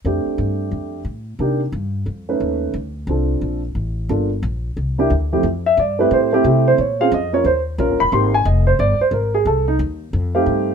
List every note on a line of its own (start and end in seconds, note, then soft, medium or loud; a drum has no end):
0.05 0.25 F2 medium
0.05 0.99 A3 soft
0.05 0.99 C4 soft
0.05 0.99 D4 soft
0.05 1.00 G4 medium
0.26 muted upright bass stroke soft
0.38 0.71 G2 medium
0.71 1.04 F2 medium
1.05 1.38 A2 medium
1.39 1.72 C3 medium
1.39 1.59 A#3 medium
1.39 1.59 D4 soft
1.39 1.60 D#4 soft
1.39 1.60 G4 medium
1.72 2.05 G2 medium
2.06 2.39 F2 medium
2.29 2.72 A3 medium
2.29 2.72 C#4 medium
2.29 2.73 D#4 medium
2.29 2.73 B4 medium
2.40 2.73 D#2 medium
2.74 3.06 D2 medium
3.07 3.40 C2 medium
3.07 3.59 C4 soft
3.07 3.60 D4 soft
3.07 3.60 F4 soft
3.07 3.60 A4 soft
3.41 3.74 A#1 medium
3.75 4.08 A1 medium
4.09 4.42 G1 medium
4.09 4.28 A#3 soft
4.09 4.29 D4 soft
4.09 4.29 F4 soft
4.09 4.29 A4 soft
4.43 4.75 A#1 medium
4.77 5.09 C2 medium
4.98 5.09 A#3 medium
4.98 5.09 D4 medium
4.98 5.09 E4 medium
4.98 5.10 G4 medium
5.10 5.43 D2 medium
5.32 5.43 F2 medium
5.32 5.43 A3 medium
5.32 5.43 C4 soft
5.32 5.43 E4 medium
5.32 5.43 G4 medium
5.43 5.76 F2 medium
5.66 5.78 E5 medium
5.77 6.10 G2 medium
5.77 5.99 D5 medium
5.99 6.30 A3 medium
5.99 6.30 C4 medium
5.99 6.30 E4 medium
5.99 6.31 G4 medium
5.99 6.11 B4 medium
6.11 6.43 A2 medium
6.11 6.33 C5 medium
6.33 6.76 A3 medium
6.33 6.76 C4 medium
6.33 6.76 E4 medium
6.33 6.45 G4 medium
6.44 6.77 C3 medium
6.44 6.66 G4 medium
6.68 6.78 C5 medium
6.78 7.10 A#2 medium
6.78 7.00 C#5 medium
7.00 7.11 C4 medium
7.00 7.11 C#4 medium
7.00 7.11 F4 medium
7.00 7.11 G#4 medium
7.00 7.12 F5 medium
7.12 7.44 F2 medium
7.12 7.33 D#5 medium
7.33 7.44 A#3 medium
7.33 7.44 C#4 soft
7.33 7.44 F4 medium
7.33 7.44 A#4 medium
7.33 7.45 C#5 medium
7.44 7.77 D#2 medium
7.44 7.58 C5 medium
7.78 7.89 A#1 medium
7.78 7.97 A#3 medium
7.78 7.98 C#4 medium
7.78 7.98 F4 medium
7.78 7.98 A#4 medium
7.89 8.00 G1 medium
8.00 8.11 D#1 medium
8.00 8.12 B5 medium
8.12 8.44 G#1 medium
8.12 8.31 A#3 medium
8.12 8.31 C4 medium
8.12 8.31 D#4 soft
8.12 8.32 G4 medium
8.12 8.33 C6 medium
8.34 8.45 G#5 medium
8.45 8.78 F1 medium
8.45 8.66 D#5 medium
8.67 8.78 C5 medium
8.79 8.98 G1 medium
8.79 9.00 D5 medium
9.00 9.12 C5 medium
9.00 muted upright bass stroke soft
9.11 9.44 G#1 medium
9.11 9.33 A#4 medium
9.34 9.46 G#4 medium
9.45 9.78 C2 medium
9.45 9.67 A4 medium
9.68 9.75 D#4 medium
9.79 10.11 D#2 medium
10.13 10.45 F2 medium
10.35 10.74 A3 medium
10.35 10.74 C4 medium
10.35 10.74 D#4 medium
10.35 10.74 G4 medium
10.35 10.74 F5 medium
10.46 10.74 G2 medium